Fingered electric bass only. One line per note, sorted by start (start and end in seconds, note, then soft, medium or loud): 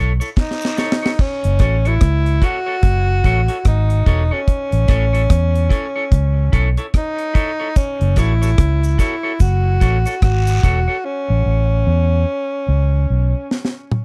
0.00 0.19 B1 medium
1.45 1.59 F#1 loud
1.60 1.97 A1 medium
2.02 2.39 C#2 loud
2.83 3.20 F#1 loud
3.25 3.47 A1 medium
3.66 4.03 G#1 medium
4.07 4.29 E1 loud
4.73 4.87 A1 loud
4.89 5.26 A1 loud
5.30 5.67 E2 loud
6.12 6.49 C#2 loud
6.53 6.76 B1 medium
8.01 8.16 F#1 loud
8.17 8.54 A1 loud
8.59 8.95 C#2 loud
9.41 9.77 F#1 loud
9.82 10.04 A1 medium
10.22 10.59 G#1 medium
10.64 10.86 E1 loud
11.30 11.44 A1 loud
11.46 11.83 A1 loud
11.87 12.24 E2 loud
12.68 13.05 C#2 loud
13.10 13.33 B1 medium